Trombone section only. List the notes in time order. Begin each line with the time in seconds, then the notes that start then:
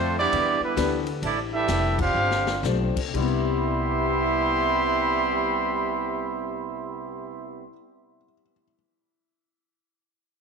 Already playing: F3 A3 C4
0.19 G3 B3 D4
0.63 D3 G3 B3
1.23 E3 G3 D4
1.54 E3 G3 E4
2.01 C4 D4 F4
3.13 C3 G3 B3 E4